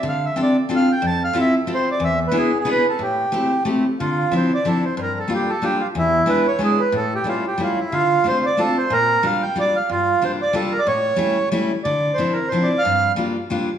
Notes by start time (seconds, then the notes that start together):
0.03 D3
0.09 F5
0.26 E5
0.36 C4 D4 F4 A4
0.42 D5
0.69 C4 D4 F4 A4
0.76 F5
0.92 G5
1.02 F2
1.07 A5
1.24 F5
1.33 C4 E4 F4 A4
1.41 E5
1.67 C4 E4 F4 A4
1.74 C5
1.91 D5
2.00 E2
2.04 E5
2.27 B4
2.31 B3 D4 E4 G#4
2.38 G#4
2.60 G#4
2.65 B3 D4 E4 G#4
2.71 B4
2.89 A4
2.99 A2 G4
3.32 A3 C4 E4 G4
3.65 A3 C4 E4 G4
4.00 D3 F4
4.31 F3 C4 D4 E4
4.37 C5
4.54 D5
4.65 F3 C4 D4 E4 A4
4.85 C5
4.97 G2 C5
5.02 A#4
5.19 A4
5.28 G3 A#3 D4 F4
5.35 G4
5.49 A4
5.62 G3 A#3 D4 F4 G4
5.80 F4
5.95 E2 E4
6.26 G#3 B3 D4 E4 B4
6.47 C#5
6.59 G#3 B3 D4 E4
6.64 G#4
6.79 B4
6.92 A2
6.97 A4
7.15 G4
7.24 G3 A3 C#4 E4
7.28 F4
7.47 G4
7.58 G3 A3 C#4 E4
7.63 F4
7.80 E4
7.92 D3 F4
8.24 A3 C4 D4 F4
8.28 C5
8.46 D5
8.57 A3 C4 D4 F4 A4
8.78 C5
8.90 A#2 A#4
9.23 G3 A#3 D4 F4 F5
9.43 G5
9.56 G3 A#3 D4 F4
9.60 D5
9.76 F5
9.89 G2 F4
10.22 G3 A#3 D4 F4 C5
10.42 D5
10.53 G3 A#3 D4 F4 A4
10.72 A#4
10.79 D5
10.87 A2 C#5
11.16 G3 A3 C#4 E4
11.52 G3 A3 C#4 E4
11.84 D3 D5
12.14 F3 C5
12.19 C4 D4 E4
12.33 A#4
12.48 F3 C5
12.53 C4 D4 E4
12.63 D5
12.78 F5
12.85 G2
13.16 G3 A#3 D4 F4
13.50 G3 A#3 D4 F4